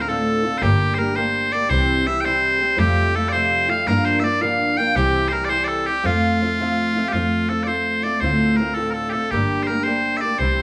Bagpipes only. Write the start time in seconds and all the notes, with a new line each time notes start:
0.02 A#4
0.09 A4
0.58 C5
0.62 G4
0.94 C5
0.99 A#4
1.16 C5
1.52 D5
1.69 C5
2.07 E5
2.21 G5
2.25 C5
2.79 G4
3.15 A4
3.29 C5 D5
3.70 F5
3.87 A#4
4.05 C5
4.20 E5
4.24 D5
4.41 F5
4.77 G5
4.96 G4
5.28 C5
5.33 A#4
5.45 D5
5.49 C5
5.64 A4 D5
5.86 G4
6.06 F4
7.08 G4
7.12 F4
7.49 A4
7.63 C5 D5
8.03 D5
8.20 C5
8.57 A#4
8.74 A4
8.91 A4 A#4
9.11 A4
9.31 G4
9.63 C5
9.67 A#4
9.84 C5
10.17 D5 E5
10.39 C5